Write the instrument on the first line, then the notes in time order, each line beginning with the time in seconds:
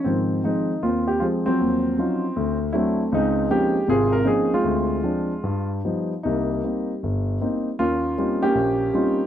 grand piano
0.04 G#2 D#3 F3 C4
0.44 F3 G#3 C4 D#4
0.83 D#2 C4 F4
1.07 G4
1.20 F3 G#3 C4 F4
1.46 F3 F#3 C4
1.61 D#2
1.98 F#3 C#4 D#4 F4
2.36 D2
2.73 F#3 A3 C4 D4 E4
3.12 C#2 G#3 C4 D#4
3.50 F3 A#3 C4 C#4 D#4 G4
3.88 G#1 C3 C4 F4 G#4
4.13 A#4
4.24 F3 A#3 C4 C#4 D#4 G#4
4.54 G#3 C4 F4
4.64 D2
5.04 F3 C4 D4
5.44 G2
5.85 F3 G3 B3 D#4
6.23 C2 G3 A#3 D#4
6.64 A#3 C4 D#4
7.03 G1
7.41 A#3 C4 D#4
7.79 D#2 A#3 C#4 F4
8.18 G3 C4 C#4 D#4 F4
8.42 A#3 C#4 G4
8.55 A#1
8.94 G3 C4 C#4 D#4 F4